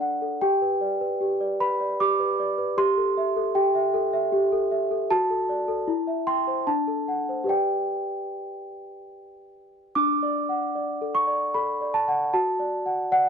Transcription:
Already playing: D4 A4 D5
0.00 F#5
0.22 A4
0.41 G4 G5
0.62 B4
0.81 D5
1.01 B4
1.21 G4
1.41 D5
1.60 B4 B5
1.80 D5
2.00 G4 D6
2.20 B4
2.40 D5
2.58 B4
2.78 G4 C6
2.98 A4
3.17 E5
3.36 A4
3.55 G4 G5
3.75 E5
3.94 A4
4.13 E5
4.32 G4
4.52 A4
4.71 E5
4.91 A4
5.11 F#4 A5
5.30 A4
5.49 D5
5.68 A4
5.88 E4
6.07 E5
6.27 G5 C6
6.47 C5
6.67 D4 A5
6.87 A4
7.08 F#5
7.29 C5
7.44 G4 B4 D5
7.49 G5
9.95 D4 D6
10.23 D5
10.49 F#5
10.75 D5
11.01 A4
11.15 C#6
11.27 D5
11.54 A4 B5
11.81 D5
11.94 A5
12.08 F#5
12.34 F#4 A5
12.60 D5
12.86 F#5
13.12 D5 F#5

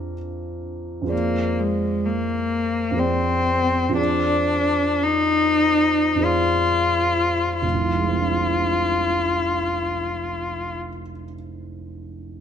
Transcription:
Already playing: F2 C4 D4 F4 G#4 F5 A#5 D6 F6
1.02 F2 F4 G#4
1.07 C5 D5
1.12 A#3
1.59 G#3
2.05 A#3
2.91 F2 F4 G#4
2.97 C4 C5 D5
3.89 F2 F4 G#4
3.94 D4 C5 D5
5.03 D#4
6.15 F2 F4 G#4
6.20 C5 D5
6.24 F4
7.60 F1 F4
7.74 C2
7.85 F3
7.96 G#3
8.08 C4
8.20 D4

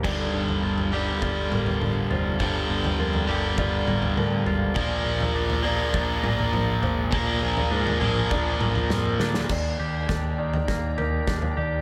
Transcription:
0.04 G1 G2 D3 G3 G4 D5 F5 A#5, kick, floor tom, crash
0.34 G1 F3
0.49 floor tom
0.63 G1 F4
0.78 floor tom
0.92 G2 D3 G3 G4 D5
1.22 G1 F4, kick, floor tom
1.51 G1 A#3 A#4, mid tom
1.66 floor tom
1.81 G1 F3, mid tom
2.10 F1 F4 C5, floor tom
2.39 G1 G2 D3 G3, kick, floor tom
2.69 G1 F3
2.84 floor tom
2.99 F2 F4 A#4
3.13 floor tom
3.27 G1 G2 D3 G3 G4
3.58 G1 F4 D5, kick, floor tom
3.87 G1 A#3, mid tom
4.02 floor tom
4.17 D2 F3 A#4, mid tom
4.46 G#1 F4, floor tom
4.74 A#1 A#2 F3 A#3 G#4 D5, kick, floor tom
5.05 A#1 F3
5.20 floor tom
5.34 A#1 D4
5.50 floor tom
5.62 A#2 F3 A#3 G#4 D5
5.94 A#1 D4, kick, floor tom
6.23 A#1 A#3 A#4, mid tom
6.39 floor tom
6.52 A#1 F3, mid tom
6.82 G#1 D4 C5, floor tom
7.11 A#1 A#2 F3 A#3 G#5, kick, floor tom
7.42 A#1 F3
7.57 floor tom
7.71 G#2 D4 A#4
7.87 floor tom
8.00 A#1 A#2 F3 A#3 G#4, mid tom
8.30 A#1 D4 D5, kick, floor tom
8.60 A#1 A#3, mid tom
8.75 floor tom
8.90 F2 F3 A#4, snare, mid tom
9.19 D2 D4, snare
9.34 snare
9.49 D#2 D#3 D5 G5 A#5, kick, snare, floor tom, crash
9.79 D#2 G4
10.09 D#2 D4, kick, snare, floor tom
10.38 D#3 D5
10.53 floor tom
10.68 D#2 A#3, kick, snare
10.97 G4 A#4, floor tom
11.27 D#2 D4, kick, snare
11.42 floor tom
11.57 D#2 G4 D5

